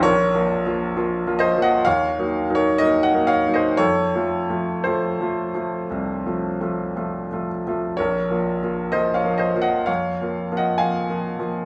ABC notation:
X:1
M:4/4
L:1/16
Q:1/4=63
K:Fphr
V:1 name="Grand piano"
[Bd]6 [ce] [eg] [df]3 [Bd] [Be] [eg] [df] [ce] | [=Ad]4 [Ac]8- [Ac]2 z2 | [Bd]4 [ce] [df] [ce] [eg] [df]3 [eg] [fa]4 |]
V:2 name="Grand piano"
(3B,,,2 [F,B,F]2 [F,B,F]2 (3[F,B,F]2 [F,B,F]2 [F,B,F]2 (3E,,2 [G,B,E]2 [G,B,E]2 (3[G,B,E]2 [G,B,E]2 [G,B,E]2 | (3F,,2 [F,=A,F]2 [F,A,F]2 (3[F,A,F]2 [F,A,F]2 [F,A,F]2 (3C,,2 [F,A,F]2 [F,A,F]2 (3[F,A,F]2 [F,A,F]2 [F,A,F]2 | (3B,,,2 [F,B,F]2 [F,B,F]2 (3[F,B,F]2 [F,B,F]2 [F,B,F]2 (3F,,2 [F,B,F]2 [F,B,F]2 (3[F,B,F]2 [F,B,F]2 [F,B,F]2 |]